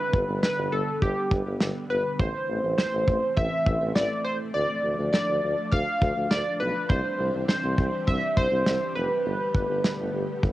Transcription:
Already playing: D3 G3 B3 B4
0.13 G1, kick
0.28 G1
0.43 B4, snare
0.58 G1
0.72 G1 A4
1.02 G1 G4, kick
1.31 G1, kick
1.46 G1
1.60 G1, snare
1.90 G1 B4
2.19 A1 E3 A3 C4 C5, kick
2.49 A1
2.63 A1
2.78 C5, snare
2.93 A1
3.08 A1, kick
3.37 A1 E5, kick
3.67 A1, kick
3.81 A1
3.95 A1 D5, snare
4.25 C5
4.54 D2 F3 D4 D5
4.84 D2
4.99 D2
5.13 D5, snare
5.28 D2
5.43 D2
5.72 D2 F5, kick
6.02 D2, kick
6.16 D2
6.31 D2 D5, snare
6.60 B1 B4
6.89 C2 E3 G3 C4 G4 C5, kick
7.19 C2
7.34 C2
7.48 C5, snare
7.64 C2
7.78 C2, kick
8.07 C2 E5, kick
8.37 C2 C5, kick
8.52 C2
8.66 C2, snare
8.95 F1 B4
9.25 G1 D3 A3 B3
9.54 G1, kick
9.69 G1
9.84 snare
9.99 G1
10.14 G1
10.43 G1, kick

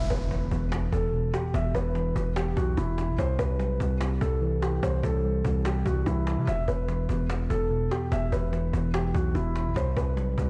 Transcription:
Already playing: impact
0.10 E1 E2 B4, cajon bass
0.31 E3, cajon slap
0.51 E1 E2, cajon bass
0.72 E2, cajon slap
0.92 E1 A4, cajon bass
1.13 B2, cajon slap
1.23 cajon slap
1.34 G4, cajon slap
1.54 E1 E2 E5, cajon bass
1.74 E1 E2 B4, cajon bass
1.95 E3, cajon slap
2.16 E1 E2, cajon bass
2.36 E2 G4, cajon slap
2.57 B1 F#4, cajon bass
2.64 cajon slap
2.70 cajon slap
2.77 E1 B2 E4, cajon bass
2.98 cajon slap
3.08 G1
3.18 C2 C3 C5, cajon bass
3.39 C2 C3 B4, cajon bass
3.59 B1 G3, cajon slap
3.80 C2 C3, cajon bass
4.01 C3, cajon slap
4.21 C2 A4, cajon bass
4.41 E3, cajon slap
4.52 cajon slap
4.62 G4, cajon slap
4.83 C2 C3 C5, cajon bass
5.03 C2 C3 A4, cajon bass
5.24 G3, cajon slap
5.44 C2 C3, cajon bass
5.65 C3 G4, cajon slap
5.86 C2 F#4, cajon bass
5.96 cajon slap
6.06 C2 E3 E4, cajon bass
6.16 cajon slap
6.27 cajon slap
6.37 C3
6.47 E1 E2 E5, cajon bass
6.68 E1 E2 B4, cajon bass
6.88 E3, cajon slap
7.09 E1 E2, cajon bass
7.30 E2, cajon slap
7.50 E1 A4, cajon bass
7.70 B2, cajon slap
7.81 cajon slap
7.91 G4, cajon slap
8.12 E1 E2 E5, cajon bass
8.32 E1 E2 B4, cajon bass
8.53 E3, cajon slap
8.73 E1 E2, cajon bass
8.94 E2 G4, cajon slap
9.14 B1 F#4, cajon bass
9.21 cajon slap
9.28 cajon slap
9.35 E1 B2 E4, cajon bass
9.56 cajon slap
9.66 G1
9.76 C2 C3 C5, cajon bass
9.96 C2 C3 B4, cajon bass
10.17 B1 G3, cajon slap
10.38 C2 C3, cajon bass

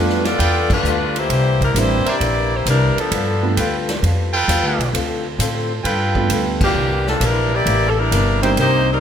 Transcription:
Already playing: F2 G3 A3 B3 D4 F4 A4 B4
0.09 snare
0.24 B3 F4 A4 D5, snare, ride
0.39 E2 G3 B3 F4 A4 B4 G5, kick, ride
0.70 A3 D4 F4 B4, kick, crash
0.83 D2 G3 B3 F4 A4, hi-hat pedal
1.16 A#3 E4 G4 C5, ride
1.29 C2 C3 E3 A#3 D4, kick, ride
1.61 G3 D4 E4 A#4, kick, ride
1.74 A1 C3 E3 G3 A#3 C4 D4 E4 G4 C5, kick, hi-hat pedal, ride
2.05 A#3 D4 E4 G4 A#4 C5 E5, muted upright bass stroke, ride
2.09 D5
2.20 A#1 C3 E3 A#3 D4, kick, ride
2.55 A#3 E4 G4 C5
2.66 C2 C3 E3 G3 A#3 D4 E4 A#4, kick, hi-hat pedal, ride
2.97 F3 B3 D4 A4, muted upright bass stroke, ride
3.11 G2 G3 B3 F4 A4, kick, ride
3.42 G3 A3 B3 D4 F4
3.56 D2 G3 B3 F4 A4 B4 G5, kick, hi-hat pedal, ride
3.88 snare, ride
4.03 F2 G3 B3 F4 A4, kick, ride
4.33 F4 A4 B4 G5
4.47 E2 G3 B3 F4 A4, kick, hi-hat pedal, ride
4.63 D2
4.78 B1, ride
4.91 D2 D3 C4 F4 A4, kick, ride
5.38 A2 D3 C4 F4 A4, kick, hi-hat pedal, ride
5.83 G2 G3 B3 F4 A4 B4 G5, kick, ride
6.15 G3 A3 B3 D4 F4, kick
6.29 D2 G3 B3 F4 A4, kick, hi-hat pedal, ride
6.61 E3 A#3 D4 G4, kick, crash
6.75 C2 C3 E3 A#3 D4
7.07 F3 A#3 D4 A4, snare
7.20 A#1 C3 E3 G3 A#3 D4 E4 A#4, kick, hi-hat pedal, ride
7.53 A#3 E4 G4 D5
7.65 A1 C3 E3 A#3 D4, kick, ride
7.88 A4
7.98 G3 D4 E4 A#4
8.10 G1 C3 E3 A#3 D4, kick, hi-hat pedal, ride
8.42 G3 A#3 C4 D4 D#4 E4 G4 A#4 C5 G5, ride
8.56 C2 C3 G3 A#3 D#4 G4 C5, kick, ride
8.60 A#3
8.91 G3 C4 D#4 A#4

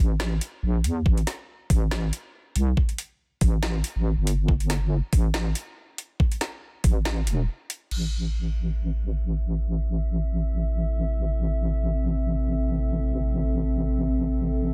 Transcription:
0.00 A1
0.20 snare
0.41 closed hi-hat
0.63 A#1
0.84 E2, closed hi-hat
1.06 A1, kick
1.18 closed hi-hat
1.27 snare, closed hi-hat
1.70 A1, kick, open hi-hat
1.91 snare
2.13 closed hi-hat
2.56 C2, closed hi-hat
2.77 kick
2.89 closed hi-hat
2.98 closed hi-hat
3.41 A1, kick, open hi-hat
3.63 snare
3.84 closed hi-hat
3.96 A1
4.17 G1
4.27 closed hi-hat
4.48 kick
4.60 closed hi-hat
4.70 snare, closed hi-hat
5.13 A1, kick, open hi-hat
5.34 snare
5.55 closed hi-hat
5.98 closed hi-hat
6.20 kick
6.32 closed hi-hat
6.41 snare, closed hi-hat
6.84 A1, kick, open hi-hat
7.05 snare
7.27 E1, closed hi-hat
7.70 closed hi-hat
7.91 A1 C4 A4 E5, crash

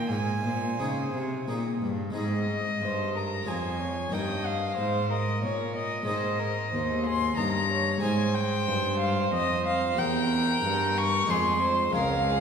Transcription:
Already playing: A#2 A#4
0.09 G#2 G#3 C5 G#5
0.44 A#2
0.79 C#3 C4 D#4 G#4
1.14 C3
1.48 A#2 C4 D#4 G#4
1.82 G2
2.10 G#3 C4 D#4
2.15 G#2 G#4 D#5
2.82 G2 C5
3.15 A#4 A#5
3.43 C#4 F4 G#4
3.47 F2 C5 G#5
3.81 C#5
4.09 G2 C#4 D#4 A#4 D#5
4.14 G5
4.46 F5
4.77 G#2 C5
5.11 A#4 D#5
5.43 A#2 C#5
5.76 D#5
6.03 G#3 C4 D#4 D#5
6.07 G#2 G#4 C5
6.39 A#4
6.73 D#2 C5
7.06 G#4 C6
7.35 G2 C#4 D#4 A#4 A#5
7.39 G2 A#4
7.71 C#5
7.98 G#3 C4 D#4
8.02 G#2 C5 G#5
8.34 G5
8.67 G2
9.00 F5
9.33 F2 D#5
9.67 F5
9.94 C4 G4 C5
9.98 E2 A#4 G5
10.63 G2
10.98 C#6
11.25 F2 G#3 F4 C5
11.29 F2 G#4 C6
11.61 C5
11.91 C#2 G#3 F4 A#4 C#5 F5
11.96 C#2
12.27 G#4

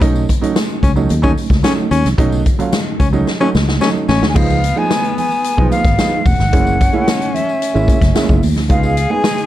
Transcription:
0.00 B1 F#3 A3 C#4 D#4, kick, closed hi-hat
0.15 tambourine
0.29 kick, closed hi-hat, tambourine
0.41 F#3 A3 C#4 D#4, muted fingered electric bass stroke, closed hi-hat, high conga
0.56 snare, closed hi-hat, tambourine
0.69 C#4 F#4
0.83 C#2 C#4, kick, closed hi-hat, tambourine, muted conga, low conga
0.96 F#3 A3 C#4 D#4, tambourine
1.09 D#2, closed hi-hat, tambourine, muted conga
1.22 F#3 A3 C#4 D#4, kick, tambourine
1.36 C#4 D#4, open hi-hat, tambourine, high conga
1.50 C#2, kick, snare, tambourine
1.63 F#3 A3 C#4 D#4, snare, closed hi-hat, tambourine, muted conga
1.78 high conga
1.91 D#2 C#4, closed hi-hat, tambourine, muted conga, high conga
2.04 C2 C#4 D#4, snare, closed hi-hat, tambourine, low conga
2.18 B1 F#3 A3 C#4 D#4, kick, closed hi-hat
2.32 tambourine
2.46 kick, closed hi-hat, tambourine, muted conga
2.59 F#3 A3 C#4 F4, muted fingered electric bass stroke, closed hi-hat, high conga
2.73 snare, closed hi-hat, tambourine
2.85 C#4 F#4
3.00 C#2 C#4, kick, closed hi-hat, tambourine, muted conga, low conga
3.13 F#3 A3 C#4 D#4, tambourine
3.27 snare, tambourine, muted conga
3.40 F#3 A3 C#4 D#4, tambourine
3.55 C#2 C#4 F#4, snare, tambourine, muted conga, high conga
3.68 snare
3.81 F#3 A3 C#4 D#4, snare, tambourine
3.96 high conga
4.09 A1 C#4, snare, tambourine, high conga
4.22 D2 C#4 D#4, snare, low conga
4.29 G#5
4.35 C#2 F3 G#3 B3 D#4 F5, kick, crash
4.50 tambourine
4.64 closed hi-hat, tambourine, muted conga
4.75 F3 G#3 B3 D#4 G#5, high conga
4.90 snare, closed hi-hat, tambourine
5.03 B3 D#4, closed hi-hat
5.18 G#5, open hi-hat, tambourine, muted conga, low conga
5.31 tambourine
5.44 closed hi-hat, tambourine, muted conga
5.57 B1 F3 G#3 B3 D#4, kick
5.71 F5, closed hi-hat, tambourine, muted conga, high conga
5.85 G#1, kick, snare, closed hi-hat, tambourine
5.98 F3 G#3 B3 D#4, snare, closed hi-hat, tambourine, muted conga, high conga
6.12 high conga
6.26 E1 F#5, kick, open hi-hat, tambourine, high conga
6.39 G1 B3 D#4, snare, tambourine, low conga
6.53 F#1 G#3 A#3 C#4 E4, kick, closed hi-hat, muted conga
6.67 tambourine
6.80 kick, closed hi-hat, tambourine, muted conga
6.93 G#3 A#3 C#4 E4, high conga
7.08 snare, closed hi-hat, tambourine
7.20 C#4 E4, closed hi-hat
7.34 E5, closed hi-hat, tambourine, low conga
7.49 tambourine
7.62 closed hi-hat, tambourine
7.74 G#1 G#3 A#3 C#4 E4, tambourine
7.88 kick, closed hi-hat, tambourine, muted conga, high conga
8.01 F#1, kick, snare, closed hi-hat
8.15 G#3 A#3 C#4 E4, snare, closed hi-hat, tambourine, muted conga, high conga
8.29 F#1, kick, high conga
8.43 D#2, open hi-hat, tambourine, high conga
8.56 D2 C#4 E4, snare, low conga
8.69 C#2 G#3 B3 D#4 F4 G#4 F5, kick, closed hi-hat
8.83 tambourine
8.97 closed hi-hat, tambourine, muted conga
9.10 G#3 B3 D#4 G#4 G#5, high conga
9.24 snare, closed hi-hat, tambourine, muted conga
9.37 D#4 G#4, closed hi-hat

